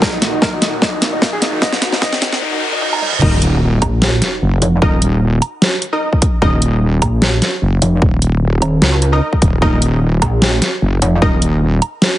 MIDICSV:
0, 0, Header, 1, 11, 480
1, 0, Start_track
1, 0, Key_signature, -6, "minor"
1, 0, Tempo, 400000
1, 23, Time_signature, 4, 2, 24, 8
1, 14620, End_track
2, 0, Start_track
2, 0, Title_t, "Synth stab"
2, 0, Program_c, 0, 62
2, 3863, Note_on_c, 0, 63, 96
2, 3863, Note_on_c, 0, 70, 89
2, 3863, Note_on_c, 0, 75, 106
2, 3994, Note_off_c, 0, 63, 0
2, 3994, Note_off_c, 0, 70, 0
2, 3994, Note_off_c, 0, 75, 0
2, 5783, Note_on_c, 0, 63, 80
2, 5783, Note_on_c, 0, 70, 77
2, 5784, Note_on_c, 0, 75, 90
2, 5914, Note_off_c, 0, 63, 0
2, 5914, Note_off_c, 0, 70, 0
2, 5914, Note_off_c, 0, 75, 0
2, 7111, Note_on_c, 0, 63, 85
2, 7111, Note_on_c, 0, 70, 78
2, 7111, Note_on_c, 0, 75, 93
2, 7304, Note_off_c, 0, 63, 0
2, 7304, Note_off_c, 0, 70, 0
2, 7304, Note_off_c, 0, 75, 0
2, 7703, Note_on_c, 0, 63, 100
2, 7703, Note_on_c, 0, 70, 90
2, 7703, Note_on_c, 0, 75, 113
2, 7834, Note_off_c, 0, 63, 0
2, 7834, Note_off_c, 0, 70, 0
2, 7834, Note_off_c, 0, 75, 0
2, 10951, Note_on_c, 0, 70, 80
2, 10952, Note_on_c, 0, 63, 87
2, 10952, Note_on_c, 0, 75, 98
2, 11145, Note_off_c, 0, 63, 0
2, 11145, Note_off_c, 0, 70, 0
2, 11145, Note_off_c, 0, 75, 0
2, 11543, Note_on_c, 0, 63, 98
2, 11543, Note_on_c, 0, 75, 103
2, 11544, Note_on_c, 0, 70, 92
2, 11674, Note_off_c, 0, 63, 0
2, 11674, Note_off_c, 0, 70, 0
2, 11674, Note_off_c, 0, 75, 0
2, 13463, Note_on_c, 0, 63, 82
2, 13463, Note_on_c, 0, 70, 74
2, 13463, Note_on_c, 0, 75, 92
2, 13594, Note_off_c, 0, 63, 0
2, 13594, Note_off_c, 0, 70, 0
2, 13594, Note_off_c, 0, 75, 0
2, 14620, End_track
3, 0, Start_track
3, 0, Title_t, "Ambient pad"
3, 0, Program_c, 1, 92
3, 0, Note_on_c, 1, 63, 82
3, 0, Note_on_c, 1, 66, 74
3, 0, Note_on_c, 1, 70, 70
3, 0, Note_on_c, 1, 78, 75
3, 2903, Note_off_c, 1, 63, 0
3, 2903, Note_off_c, 1, 66, 0
3, 2903, Note_off_c, 1, 70, 0
3, 2903, Note_off_c, 1, 78, 0
3, 14620, End_track
4, 0, Start_track
4, 0, Title_t, "Grand piano"
4, 0, Program_c, 2, 0
4, 21, Note_on_c, 2, 70, 98
4, 118, Note_off_c, 2, 70, 0
4, 151, Note_on_c, 2, 63, 61
4, 234, Note_off_c, 2, 63, 0
4, 263, Note_on_c, 2, 63, 63
4, 358, Note_off_c, 2, 63, 0
4, 391, Note_on_c, 2, 63, 64
4, 474, Note_off_c, 2, 63, 0
4, 503, Note_on_c, 2, 70, 89
4, 598, Note_off_c, 2, 70, 0
4, 633, Note_on_c, 2, 63, 61
4, 715, Note_off_c, 2, 63, 0
4, 744, Note_on_c, 2, 63, 65
4, 839, Note_off_c, 2, 63, 0
4, 983, Note_on_c, 2, 63, 63
4, 1078, Note_off_c, 2, 63, 0
4, 1112, Note_on_c, 2, 63, 64
4, 1194, Note_off_c, 2, 63, 0
4, 1351, Note_on_c, 2, 63, 65
4, 1434, Note_off_c, 2, 63, 0
4, 1463, Note_on_c, 2, 63, 65
4, 1558, Note_off_c, 2, 63, 0
4, 1592, Note_on_c, 2, 68, 92
4, 1674, Note_off_c, 2, 68, 0
4, 1704, Note_on_c, 2, 63, 63
4, 1799, Note_off_c, 2, 63, 0
4, 1832, Note_on_c, 2, 63, 64
4, 1915, Note_off_c, 2, 63, 0
4, 1943, Note_on_c, 2, 75, 94
4, 2039, Note_off_c, 2, 75, 0
4, 2071, Note_on_c, 2, 63, 65
4, 2154, Note_off_c, 2, 63, 0
4, 2183, Note_on_c, 2, 63, 63
4, 2278, Note_off_c, 2, 63, 0
4, 2313, Note_on_c, 2, 63, 62
4, 2395, Note_off_c, 2, 63, 0
4, 2423, Note_on_c, 2, 75, 98
4, 2518, Note_off_c, 2, 75, 0
4, 2552, Note_on_c, 2, 63, 65
4, 2634, Note_off_c, 2, 63, 0
4, 2662, Note_on_c, 2, 63, 64
4, 2758, Note_off_c, 2, 63, 0
4, 2903, Note_on_c, 2, 63, 64
4, 2998, Note_off_c, 2, 63, 0
4, 3032, Note_on_c, 2, 63, 63
4, 3114, Note_off_c, 2, 63, 0
4, 3272, Note_on_c, 2, 63, 66
4, 3354, Note_off_c, 2, 63, 0
4, 3384, Note_on_c, 2, 63, 66
4, 3479, Note_off_c, 2, 63, 0
4, 3513, Note_on_c, 2, 82, 94
4, 3595, Note_off_c, 2, 82, 0
4, 3624, Note_on_c, 2, 63, 64
4, 3719, Note_off_c, 2, 63, 0
4, 3752, Note_on_c, 2, 63, 67
4, 3835, Note_off_c, 2, 63, 0
4, 14620, End_track
5, 0, Start_track
5, 0, Title_t, "Supersaw synth"
5, 0, Program_c, 3, 81
5, 0, Note_on_c, 3, 39, 86
5, 0, Note_on_c, 3, 46, 75
5, 0, Note_on_c, 3, 54, 86
5, 2854, Note_off_c, 3, 39, 0
5, 2854, Note_off_c, 3, 46, 0
5, 2854, Note_off_c, 3, 54, 0
5, 14620, End_track
6, 0, Start_track
6, 0, Title_t, "Wobble bass"
6, 0, Program_c, 4, 39
6, 4583, Note_on_c, 4, 34, 105
6, 5045, Note_off_c, 4, 34, 0
6, 5543, Note_on_c, 4, 29, 96
6, 5765, Note_off_c, 4, 29, 0
6, 8423, Note_on_c, 4, 34, 102
6, 8885, Note_off_c, 4, 34, 0
6, 9383, Note_on_c, 4, 29, 99
6, 9605, Note_off_c, 4, 29, 0
6, 10344, Note_on_c, 4, 27, 100
6, 10566, Note_off_c, 4, 27, 0
6, 10584, Note_on_c, 4, 37, 103
6, 11046, Note_off_c, 4, 37, 0
6, 12263, Note_on_c, 4, 34, 101
6, 12725, Note_off_c, 4, 34, 0
6, 13224, Note_on_c, 4, 29, 93
6, 13446, Note_off_c, 4, 29, 0
6, 14620, End_track
7, 0, Start_track
7, 0, Title_t, "Wobble bass"
7, 0, Program_c, 5, 39
7, 3863, Note_on_c, 5, 27, 98
7, 4565, Note_off_c, 5, 27, 0
7, 5303, Note_on_c, 5, 30, 102
7, 5525, Note_off_c, 5, 30, 0
7, 5783, Note_on_c, 5, 27, 93
7, 6485, Note_off_c, 5, 27, 0
7, 7703, Note_on_c, 5, 27, 90
7, 8405, Note_off_c, 5, 27, 0
7, 9143, Note_on_c, 5, 30, 101
7, 9365, Note_off_c, 5, 30, 0
7, 9622, Note_on_c, 5, 27, 93
7, 10325, Note_off_c, 5, 27, 0
7, 11303, Note_on_c, 5, 27, 97
7, 11525, Note_off_c, 5, 27, 0
7, 11543, Note_on_c, 5, 27, 100
7, 12245, Note_off_c, 5, 27, 0
7, 12983, Note_on_c, 5, 30, 100
7, 13205, Note_off_c, 5, 30, 0
7, 13463, Note_on_c, 5, 27, 97
7, 14165, Note_off_c, 5, 27, 0
7, 14620, End_track
8, 0, Start_track
8, 0, Title_t, "Reverse cymbal"
8, 0, Program_c, 6, 119
8, 2903, Note_on_c, 6, 60, 72
8, 3863, Note_off_c, 6, 60, 0
8, 14620, End_track
9, 0, Start_track
9, 0, Title_t, "Riser"
9, 0, Program_c, 7, 103
9, 0, Note_on_c, 7, 60, 76
9, 3863, Note_off_c, 7, 60, 0
9, 14620, End_track
10, 0, Start_track
10, 0, Title_t, "Sub drop"
10, 0, Program_c, 8, 103
10, 3863, Note_on_c, 8, 60, 78
10, 5783, Note_off_c, 8, 60, 0
10, 14620, End_track
11, 0, Start_track
11, 0, Title_t, "Drums"
11, 22, Note_on_c, 9, 38, 73
11, 23, Note_on_c, 9, 36, 94
11, 142, Note_off_c, 9, 38, 0
11, 143, Note_off_c, 9, 36, 0
11, 263, Note_on_c, 9, 38, 78
11, 263, Note_on_c, 9, 42, 81
11, 383, Note_off_c, 9, 38, 0
11, 383, Note_off_c, 9, 42, 0
11, 503, Note_on_c, 9, 36, 101
11, 503, Note_on_c, 9, 38, 78
11, 623, Note_off_c, 9, 36, 0
11, 623, Note_off_c, 9, 38, 0
11, 743, Note_on_c, 9, 38, 78
11, 743, Note_on_c, 9, 42, 80
11, 863, Note_off_c, 9, 38, 0
11, 863, Note_off_c, 9, 42, 0
11, 983, Note_on_c, 9, 36, 101
11, 983, Note_on_c, 9, 38, 80
11, 1103, Note_off_c, 9, 36, 0
11, 1103, Note_off_c, 9, 38, 0
11, 1223, Note_on_c, 9, 38, 82
11, 1223, Note_on_c, 9, 42, 77
11, 1343, Note_off_c, 9, 38, 0
11, 1343, Note_off_c, 9, 42, 0
11, 1462, Note_on_c, 9, 36, 98
11, 1463, Note_on_c, 9, 38, 84
11, 1582, Note_off_c, 9, 36, 0
11, 1583, Note_off_c, 9, 38, 0
11, 1703, Note_on_c, 9, 38, 88
11, 1703, Note_on_c, 9, 42, 84
11, 1823, Note_off_c, 9, 38, 0
11, 1823, Note_off_c, 9, 42, 0
11, 1942, Note_on_c, 9, 36, 99
11, 1942, Note_on_c, 9, 38, 93
11, 2062, Note_off_c, 9, 36, 0
11, 2062, Note_off_c, 9, 38, 0
11, 2070, Note_on_c, 9, 38, 75
11, 2182, Note_off_c, 9, 38, 0
11, 2182, Note_on_c, 9, 38, 94
11, 2182, Note_on_c, 9, 42, 81
11, 2302, Note_off_c, 9, 38, 0
11, 2302, Note_off_c, 9, 42, 0
11, 2311, Note_on_c, 9, 38, 84
11, 2422, Note_off_c, 9, 38, 0
11, 2422, Note_on_c, 9, 38, 97
11, 2423, Note_on_c, 9, 36, 99
11, 2542, Note_off_c, 9, 38, 0
11, 2543, Note_off_c, 9, 36, 0
11, 2551, Note_on_c, 9, 38, 88
11, 2662, Note_off_c, 9, 38, 0
11, 2662, Note_on_c, 9, 38, 101
11, 2662, Note_on_c, 9, 42, 77
11, 2782, Note_off_c, 9, 38, 0
11, 2782, Note_off_c, 9, 42, 0
11, 2790, Note_on_c, 9, 38, 91
11, 2910, Note_off_c, 9, 38, 0
11, 3622, Note_on_c, 9, 48, 64
11, 3742, Note_off_c, 9, 48, 0
11, 3751, Note_on_c, 9, 47, 77
11, 3862, Note_on_c, 9, 49, 102
11, 3863, Note_on_c, 9, 36, 124
11, 3871, Note_off_c, 9, 47, 0
11, 3982, Note_off_c, 9, 49, 0
11, 3983, Note_off_c, 9, 36, 0
11, 4102, Note_on_c, 9, 42, 79
11, 4222, Note_off_c, 9, 42, 0
11, 4582, Note_on_c, 9, 42, 82
11, 4582, Note_on_c, 9, 77, 79
11, 4583, Note_on_c, 9, 36, 65
11, 4702, Note_off_c, 9, 42, 0
11, 4702, Note_off_c, 9, 77, 0
11, 4703, Note_off_c, 9, 36, 0
11, 4822, Note_on_c, 9, 38, 123
11, 4942, Note_off_c, 9, 38, 0
11, 5062, Note_on_c, 9, 38, 61
11, 5062, Note_on_c, 9, 42, 83
11, 5182, Note_off_c, 9, 38, 0
11, 5182, Note_off_c, 9, 42, 0
11, 5542, Note_on_c, 9, 42, 83
11, 5662, Note_off_c, 9, 42, 0
11, 5783, Note_on_c, 9, 36, 127
11, 5903, Note_off_c, 9, 36, 0
11, 6022, Note_on_c, 9, 42, 83
11, 6142, Note_off_c, 9, 42, 0
11, 6503, Note_on_c, 9, 42, 87
11, 6503, Note_on_c, 9, 77, 75
11, 6623, Note_off_c, 9, 42, 0
11, 6623, Note_off_c, 9, 77, 0
11, 6743, Note_on_c, 9, 38, 126
11, 6863, Note_off_c, 9, 38, 0
11, 6983, Note_on_c, 9, 42, 82
11, 7103, Note_off_c, 9, 42, 0
11, 7351, Note_on_c, 9, 36, 60
11, 7463, Note_off_c, 9, 36, 0
11, 7463, Note_on_c, 9, 36, 109
11, 7463, Note_on_c, 9, 42, 89
11, 7583, Note_off_c, 9, 36, 0
11, 7583, Note_off_c, 9, 42, 0
11, 7703, Note_on_c, 9, 36, 127
11, 7823, Note_off_c, 9, 36, 0
11, 7943, Note_on_c, 9, 42, 80
11, 8063, Note_off_c, 9, 42, 0
11, 8422, Note_on_c, 9, 36, 66
11, 8423, Note_on_c, 9, 42, 85
11, 8423, Note_on_c, 9, 77, 77
11, 8542, Note_off_c, 9, 36, 0
11, 8543, Note_off_c, 9, 42, 0
11, 8543, Note_off_c, 9, 77, 0
11, 8663, Note_on_c, 9, 38, 127
11, 8783, Note_off_c, 9, 38, 0
11, 8903, Note_on_c, 9, 38, 65
11, 8903, Note_on_c, 9, 42, 75
11, 9023, Note_off_c, 9, 38, 0
11, 9023, Note_off_c, 9, 42, 0
11, 9383, Note_on_c, 9, 42, 83
11, 9503, Note_off_c, 9, 42, 0
11, 9622, Note_on_c, 9, 36, 125
11, 9742, Note_off_c, 9, 36, 0
11, 9863, Note_on_c, 9, 42, 75
11, 9983, Note_off_c, 9, 42, 0
11, 10343, Note_on_c, 9, 42, 79
11, 10343, Note_on_c, 9, 77, 75
11, 10463, Note_off_c, 9, 42, 0
11, 10463, Note_off_c, 9, 77, 0
11, 10583, Note_on_c, 9, 38, 119
11, 10703, Note_off_c, 9, 38, 0
11, 10823, Note_on_c, 9, 42, 76
11, 10943, Note_off_c, 9, 42, 0
11, 11192, Note_on_c, 9, 36, 63
11, 11303, Note_off_c, 9, 36, 0
11, 11303, Note_on_c, 9, 36, 112
11, 11303, Note_on_c, 9, 42, 78
11, 11423, Note_off_c, 9, 36, 0
11, 11423, Note_off_c, 9, 42, 0
11, 11543, Note_on_c, 9, 36, 124
11, 11663, Note_off_c, 9, 36, 0
11, 11783, Note_on_c, 9, 42, 76
11, 11903, Note_off_c, 9, 42, 0
11, 12263, Note_on_c, 9, 36, 65
11, 12263, Note_on_c, 9, 42, 78
11, 12263, Note_on_c, 9, 77, 79
11, 12383, Note_off_c, 9, 36, 0
11, 12383, Note_off_c, 9, 42, 0
11, 12383, Note_off_c, 9, 77, 0
11, 12502, Note_on_c, 9, 38, 120
11, 12622, Note_off_c, 9, 38, 0
11, 12743, Note_on_c, 9, 38, 59
11, 12743, Note_on_c, 9, 42, 78
11, 12863, Note_off_c, 9, 38, 0
11, 12863, Note_off_c, 9, 42, 0
11, 13223, Note_on_c, 9, 42, 80
11, 13343, Note_off_c, 9, 42, 0
11, 13463, Note_on_c, 9, 36, 122
11, 13583, Note_off_c, 9, 36, 0
11, 13703, Note_on_c, 9, 42, 75
11, 13823, Note_off_c, 9, 42, 0
11, 14184, Note_on_c, 9, 42, 80
11, 14184, Note_on_c, 9, 77, 80
11, 14304, Note_off_c, 9, 42, 0
11, 14304, Note_off_c, 9, 77, 0
11, 14422, Note_on_c, 9, 38, 120
11, 14542, Note_off_c, 9, 38, 0
11, 14620, End_track
0, 0, End_of_file